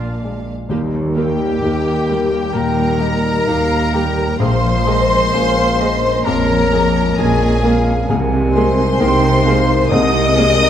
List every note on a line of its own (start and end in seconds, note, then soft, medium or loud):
0.00 0.47 A#1 soft
0.00 0.47 A#2 soft
0.00 0.66 A#2 soft
0.00 0.24 G#3 soft
0.00 0.68 G#3 soft
0.00 0.51 A#3 soft
0.00 0.71 C4 soft
0.00 0.51 D4 soft
0.00 0.20 F4 soft
0.00 0.24 F4 medium
0.00 0.70 F4 soft
0.00 0.24 D5 soft
0.00 0.73 D5 soft
0.00 0.48 F5 soft
0.24 0.67 G#3 soft
0.24 0.67 D5 soft
0.69 1.52 D#2 medium
0.69 2.51 D#2 medium
0.69 1.52 D#2 medium
0.69 2.55 D#3 soft
0.69 4.36 G3 medium
0.69 0.79 A#3 medium
0.69 0.79 G4 medium
0.69 4.36 A#4 medium
0.94 2.78 G3 soft
1.16 1.59 G3 soft
1.16 1.25 A#3 soft
1.16 3.01 D#4 soft
1.16 2.55 G4 medium
1.16 2.51 G4 medium
1.16 1.25 G4 soft
1.16 1.59 A#4 soft
1.16 2.51 G5 medium
1.40 1.85 A#4 soft
1.62 2.44 D#2 medium
1.62 2.45 D#2 medium
1.62 1.72 A#3 soft
1.62 2.05 D#4 soft
1.62 2.09 G4 soft
1.62 1.72 G4 soft
1.62 2.05 A#4 soft
1.87 2.31 A#4 soft
2.09 2.51 G3 soft
2.09 2.18 A#3 soft
2.09 3.47 G4 soft
2.09 2.19 G4 soft
2.09 2.51 A#4 soft
2.32 3.24 A#4 soft
2.53 3.37 D#2 medium
2.53 3.29 A#2 soft
2.53 4.45 D#3 medium
2.53 2.64 A#3 soft
2.53 2.64 G4 soft
2.53 4.38 A#4 medium
2.53 4.40 A#4 medium
2.53 3.02 G5 medium
2.53 4.40 A#5 medium
2.79 4.45 G3 soft
3.00 3.43 G3 soft
3.00 3.09 A#3 soft
3.00 4.45 D#4 soft
3.00 3.09 G4 soft
3.00 3.44 A#4 soft
3.00 3.48 D#5 medium
3.26 3.71 A#4 soft
3.47 4.29 D#2 medium
3.47 4.30 D#2 medium
3.47 3.55 A#3 medium
3.47 3.90 D#4 soft
3.47 3.56 G4 medium
3.47 3.93 G4 medium
3.47 3.90 A#4 soft
3.47 3.95 F5 medium
3.72 4.17 A#4 soft
3.94 4.37 G3 soft
3.94 4.02 A#3 medium
3.94 4.44 G4 medium
3.94 4.02 G4 medium
3.94 4.37 A#4 soft
3.94 4.39 G5 medium
4.18 5.32 A#4 soft
4.39 6.21 A#1 medium
4.39 5.23 A#1 medium
4.39 5.23 A#2 medium
4.39 6.25 A#2 medium
4.39 7.92 G#3 medium
4.39 4.49 A#3 medium
4.39 4.49 G#4 medium
4.39 7.92 A#4 medium
4.39 6.27 C5 medium
4.39 6.22 C5 medium
4.39 4.88 F5 medium
4.39 6.26 C6 loud
4.64 6.49 F3 soft
4.86 5.30 G#3 soft
4.86 6.72 G#3 soft
4.86 4.94 A#3 medium
4.86 4.95 G#4 medium
4.86 5.30 A#4 soft
4.86 5.35 D#5 medium
5.10 5.55 C#4 medium
5.33 6.15 A#1 medium
5.33 6.15 A#2 medium
5.33 5.42 A#3 medium
5.33 5.76 C#4 soft
5.33 5.41 G#4 medium
5.33 5.78 A#4 medium
5.33 5.77 A#4 soft
5.33 5.82 F5 medium
5.56 6.02 C#4 soft
5.79 6.22 G#3 soft
5.79 5.88 A#3 soft
5.79 5.88 G#4 soft
5.79 7.17 A#4 medium
5.79 6.22 A#4 soft
5.79 6.29 D#5 medium
6.03 6.95 C#4 soft
6.25 7.07 A#1 medium
6.25 7.00 F2 medium
6.25 7.07 A#2 medium
6.25 8.13 A#2 medium
6.25 6.35 A#3 medium
6.25 6.34 G#4 medium
6.25 7.17 A#4 medium
6.25 7.16 A#4 medium
6.25 7.20 C#5 medium
6.25 7.16 A#5 medium
6.50 8.13 F3 medium
6.72 7.14 G#3 soft
6.72 8.55 G#3 soft
6.72 6.82 A#3 medium
6.72 6.82 G#4 medium
6.72 7.14 A#4 medium
6.96 7.41 C#4 medium
7.17 7.98 A#1 medium
7.17 7.98 A#2 medium
7.17 7.28 A#3 medium
7.17 7.60 C#4 medium
7.17 8.07 G#4 medium
7.17 7.27 G#4 medium
7.17 8.10 G#4 medium
7.17 7.63 A#4 soft
7.17 7.60 A#4 medium
7.17 7.65 D#5 medium
7.17 8.09 G#5 medium
7.42 7.87 C#4 medium
7.63 8.04 G#3 soft
7.63 7.73 A#3 medium
7.63 7.73 G#4 medium
7.63 8.05 A#4 medium
7.63 9.00 A#4 medium
7.63 8.09 F5 medium
7.88 8.13 C#4 medium
8.09 8.89 C2 medium
8.09 9.87 C2 medium
8.09 8.89 C3 medium
8.09 9.90 C3 medium
8.09 10.70 G#3 medium
8.09 8.18 A#3 medium
8.09 8.18 G#4 medium
8.09 10.70 A#4 medium
8.09 9.01 G#5 medium
8.34 10.14 C4 medium
8.54 8.96 G#3 medium
8.54 10.36 G#3 medium
8.54 8.64 A#3 medium
8.54 8.64 G#4 medium
8.54 8.97 A#4 medium
8.54 9.93 C5 medium
8.54 9.87 C5 medium
8.54 9.87 C6 loud
8.78 9.23 D#4 medium
8.99 9.81 C2 medium
8.99 9.80 C3 medium
8.99 9.08 A#3 medium
8.99 9.42 D#4 medium
8.99 9.09 G#4 medium
8.99 9.42 A#4 medium
8.99 9.45 A#4 medium
8.99 9.47 G5 medium
9.24 9.69 D#4 medium
9.46 9.88 G#3 medium
9.46 9.56 A#3 medium
9.46 9.56 G#4 medium
9.46 10.70 A#4 medium
9.46 9.88 A#4 medium
9.46 9.71 F5 medium
9.70 10.59 D#4 medium
9.89 10.70 C2 medium
9.89 10.70 C3 medium
9.89 10.70 D#5 loud
9.89 10.54 D#5 medium
9.89 10.70 D#6 loud
9.93 10.01 A#3 medium
9.93 10.01 G#4 medium
10.15 10.70 C4 medium
10.36 10.70 G#3 medium
10.36 10.46 A#3 medium
10.36 10.47 G#4 medium
10.36 10.70 A#4 medium
10.60 10.70 D#4 medium